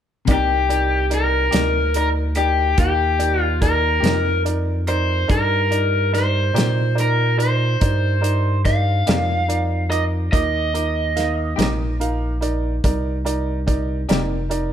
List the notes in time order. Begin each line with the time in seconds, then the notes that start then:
0.25 C2 C3 A#3 D#4 G4 A#4 D5, kick, closed hi-hat
0.32 G4
0.69 D#4 A#4 D5, closed hi-hat
1.10 D#4 A#4 D5, closed hi-hat
1.14 A#4
1.51 D2 C3 A#3 D#4 G4 A#4 D5, snare, closed hi-hat
1.94 D#4 A#4 D5, closed hi-hat
2.35 D#4 G4 A#4 D5, closed hi-hat
2.78 D#2 D#4 G4 A#4 F5, kick, closed hi-hat
3.19 D#4 A#4 D5, closed hi-hat
3.42 F4
3.61 D#4 A#4 D5, kick, closed hi-hat
4.00 F2 C3 A#3 D#4 G4 A#4 D#5, closed hi-hat
4.06 snare
4.45 D#4 A#4 D5, closed hi-hat
4.87 D#4 A#4 C5 D5, closed hi-hat
5.28 G2 D#4 A#4 D5, kick, closed hi-hat
5.70 D#4 A#4 D5, closed hi-hat
6.12 D#4 A#4 C5 D5, closed hi-hat
6.17 snare
6.53 A#2 C3 A#3 D#4 G4 A#4 D5, closed hi-hat
6.58 snare
6.95 D#4 A#4 D5, closed hi-hat
7.00 A#4
7.37 D#4 A#4 C5 D5, closed hi-hat
7.80 G2 D#4 A#4 D5, kick, closed hi-hat
8.21 D#4 A#4 D5, closed hi-hat
8.64 D#4 A#4 D5 F5, kick, snare, closed hi-hat
9.06 F2 C3 A#3 D#4 G4 A#4 D5, snare, closed hi-hat
9.48 D#4 A#4 D5, closed hi-hat
9.89 D#4 A#4 D#5 D6, closed hi-hat
10.32 D#2 D#4 A#4 D#5 D6, kick, closed hi-hat
10.74 D#4 A#4 D6, closed hi-hat
11.16 D#4 A#4 F5, snare, closed hi-hat
11.56 A#1 C3 A#3 D#4 G4 A#4 D6, closed hi-hat
11.61 snare
12.00 D#4 A#4 F5, closed hi-hat
12.41 D#4 A#4 D5, closed hi-hat
12.84 C2 D#4 A#4 D5, kick, closed hi-hat
13.25 D#4 A#4 D5, closed hi-hat
13.66 D#4 A#4 D5, kick, closed hi-hat
14.09 F1 C3 A#3 D#4 G4 A#4 D5, snare, closed hi-hat
14.49 D#4 A#4 D5, closed hi-hat